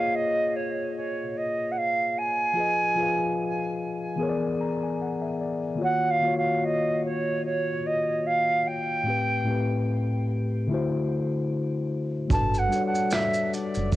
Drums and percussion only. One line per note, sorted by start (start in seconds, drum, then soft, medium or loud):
12.30 kick loud
12.30 shaker medium
12.54 shaker soft
12.72 closed hi-hat medium
12.72 shaker soft
12.95 shaker soft
13.11 finger snap medium
13.11 snare medium
13.11 shaker medium
13.34 shaker soft
13.54 closed hi-hat medium
13.54 shaker soft
13.75 shaker medium
13.92 kick medium
13.92 shaker medium